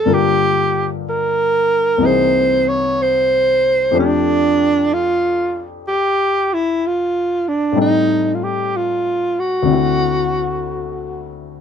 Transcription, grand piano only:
X:1
M:4/4
L:1/8
Q:"Swing" 1/4=62
K:F
V:1 name="Grand piano"
[G,,D,B,FB]4 [C,,C,E,B,^D^G]4 | [F,,F,A,DG]8 | [A,,G,C_EA]4 [D,,D,C=E^F]4 |]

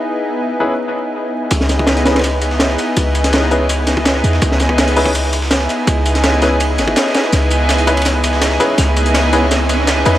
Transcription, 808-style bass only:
X:1
M:4/4
L:1/8
Q:1/4=165
K:C#m
V:1 name="808-style bass" clef=bass
z8 | C,,6- C,, z | C,,6- C,, E,, | C,,6- C,, z |
C,,4- C,, G,,, z2 | C,,6- C,, z | C,,6- C,, E,, |]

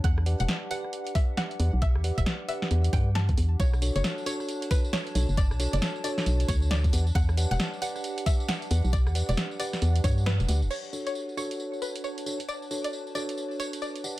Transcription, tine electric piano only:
X:1
M:4/4
L:1/8
Q:"Swing 16ths" 1/4=135
K:Bm
V:1 name="Tine electric piano"
z [GBdf]2 [GBdf]4 [GBdf] | z [GBdf]2 [GBdf]2 [GBdf] z2 | z [DFAc]2 [DFAc]4 [DFAc] | z [DFAc]2 [DFAc]4 [GBdf] |
z [GBdf]2 [GBdf]4 [GBdf] | z [GBdf]2 [GBdf]4 [GBdf] | z [DFAc]2 [DFAc]4 [DFAc] | z [DFAc]2 [DFAc]4 [GBdf] |]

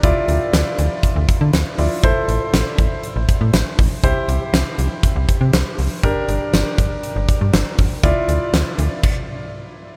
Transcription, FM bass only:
X:1
M:4/4
L:1/16
Q:1/4=120
K:Dm
V:1 name="FM bass" clef=bass
D,, z D,, z D,, z D,, z2 D,, z D, D,, z D,, z | A,,, z A,,, z A,,, z A,,, z2 A,,, z A,, A,,, z A,,, z | C,, z C,, z C,, z C,, z2 C,, z C, C,, z C,, z | G,,, z G,,, z G,,, z G,,, z2 G,,, z G,, G,,, z G,,, z |
D,, z D,, z D,, z D,, z8 z |]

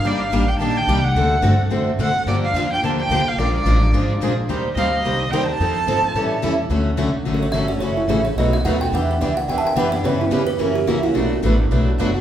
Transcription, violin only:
X:1
M:4/4
L:1/16
Q:"Swing" 1/4=216
K:Eblyd
V:1 name="Violin"
d2 f4 g2 a2 g4 _g2- | _g6 z6 ^f4 | d2 f4 g2 a2 g4 f2 | d2 d8 z6 |
z3 z/2 e/2 f2 e6 g2 a2- | a12- a2 z2 | [K:D] z16 | z16 |
z16 | z16 | z16 |]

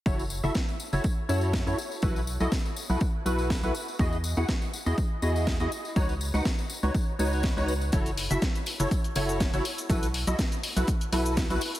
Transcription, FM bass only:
X:1
M:4/4
L:1/16
Q:"Swing 16ths" 1/4=122
K:F#dor
V:1 name="FM bass" clef=bass
F,,,3 F,,, z3 F,,, z2 F,,3 F,, z2 | B,,,3 B,,, z3 B,,, z2 B,,,3 B,,, z2 | E,,3 E,, z3 E,, z2 E,,3 E,, z2 | C,,3 C,, z3 C,, z2 C,,3 C,,3 |
F,,,3 F,,, z3 F,,, z2 F,,,3 F,,, z2 | B,,,3 B,,, z3 B,,, z2 B,,,3 B,,, z2 |]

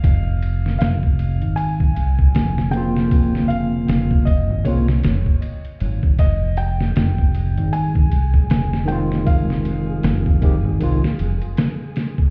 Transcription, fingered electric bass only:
X:1
M:4/4
L:1/16
Q:"Swing 16ths" 1/4=78
K:Fm
V:1 name="Fingered electric bass" clef=bass
F,,,4 F,,,3 A,,,3 C,,2 F,,,4- | F,,,4 F,,,3 A,,, C,,2 F,,, z3 A,,,2 | F,,,4 F,,,3 A,,,3 C,,2 F,,,4- | F,,,4 F,,,3 A,,, C,, z F,,, z4 z |]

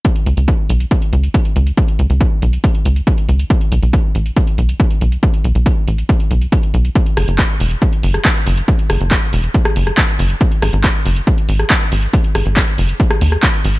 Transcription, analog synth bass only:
X:1
M:4/4
L:1/16
Q:1/4=139
K:G#phr
V:1 name="Analog synth bass" clef=bass
z2 C,, C,, z2 B,,, z3 C,, z3 C,, z | z2 C,, C,, z2 B,,, z3 C,, z3 C,, z | z2 B,,, B,,, z2 A,,, z3 B,,, z3 B,,, z | z2 B,,, B,,, z2 A,,, z3 B,,, z3 B,,, z |
z2 F,,, F,,, z2 E,,, z3 F,,, z3 F,,, z | z2 F,,, F,,, z2 E,,, z3 F,,, z3 F,,, z | z2 G,,, G,,, z2 F,,, z3 G,,, z3 G,,, z | z2 G,,, G,,, z2 F,,, z3 D,, z3 G,,, z |]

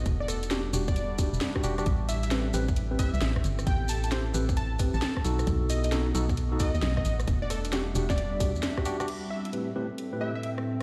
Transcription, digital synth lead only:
X:1
M:4/4
L:1/16
Q:"Swing 16ths" 1/4=133
K:Ador
V:1 name="Digital synth lead"
z d A z4 d6 z3 | z2 e e z6 e e e z3 | g2 a a z4 a z2 a3 z2 | z2 ^d d z6 d d d d d z |
z d A z4 d6 z3 | z2 e e z6 e e e z3 |]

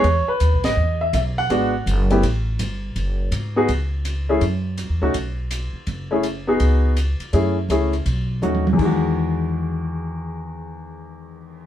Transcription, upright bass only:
X:1
M:4/4
L:1/8
Q:"Swing" 1/4=165
K:E
V:1 name="Upright bass" clef=bass
E,, z (3D,, B,,, G,,, E,,2 B,,,2 | G,,,2 F,,,2 A,,,2 =G,,,2 | F,,,2 G,,2 C,,4 | F,,2- (3F,, E,, C,, B,,,3 z |
F,,,4 C,,3 z | F,,2 C,,2 B,,,2 D,,2 | E,,8- | E,,8 |]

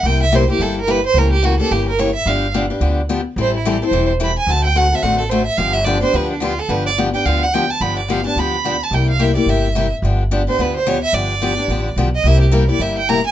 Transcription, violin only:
X:1
M:4/4
L:1/8
Q:"Swing" 1/4=216
K:Gmix
V:1 name="Violin"
g e c G A _B =B c | ^A G ^F =A G ^A ^c e | f2 z6 | c E G c2 z b _a |
a g ^f e f A c e | f e d c B D F A | B d z g f ^f g a | b d f a b3 a |
g f e d e3 z | z3 c B c ^c e | d6 z _e | e G _B d e g _b _a |]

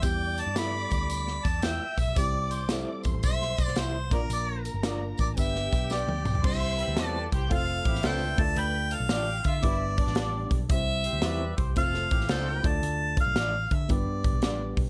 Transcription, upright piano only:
X:1
M:4/4
L:1/8
Q:"Swing" 1/4=113
K:C
V:1 name="Upright piano"
[G,B,EG] z [F,G,B,EA]3 z3 | [G,CEG] z [G,CEA]3 z2 [_B,DF_B]- | [_B,DF_B] z [B,DFB]2 [=B,DG=B]3 z | [G,CDEGc]3 z [A,CFAc]2 [A,CFAB] [A,DFAd]- |
[A,DFAd]2 z2 [G,B,DGB]2 [G,B,DGd] z | [G,CEGc]3 z [A,CFAc]2 [A,CFAc] [A,DFAd]- | [A,DFAd]2 z2 [G,B,DGB]2 [G,B,DGB] z |]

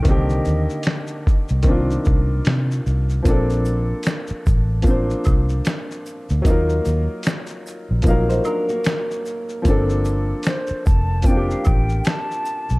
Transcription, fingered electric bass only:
X:1
M:4/4
L:1/16
Q:"Swing 16ths" 1/4=75
K:Bb
V:1 name="Fingered electric bass" clef=bass
C,,2 E,, z4 C,,3 C,,2 C,2 C,,2 | B,,,4 z2 A,,,4 C,,2 z3 D,, | E,,2 E,, z4 B,,, B,,,2 z6 | G,,,4 z2 F,,,4 A,,,2 z3 _C,, |]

